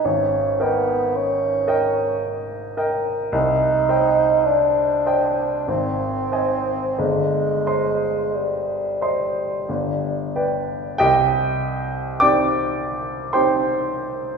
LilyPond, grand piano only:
\new Staff \with { instrumentName = "Grand piano" } { \time 3/4 \key dis \phrygian \tempo 4 = 51 gis,,8 <ais' dis'' g''>4 <ais' dis'' g''>4 <ais' dis'' g''>8 | \key c \minor c,8 <c'' ees'' g''>4 <c'' ees'' g''>8 aes,,8 <c'' ees'' aes''>8 | g,,8 <c'' ees'' c'''>4 <c'' ees'' c'''>8 g,,8 <b' d'' g''>8 | <c, g' ees'' g''>4 <c' ees' g' d'' g'' d'''>4 <c' ees' g' c'' g'' c'''>4 | }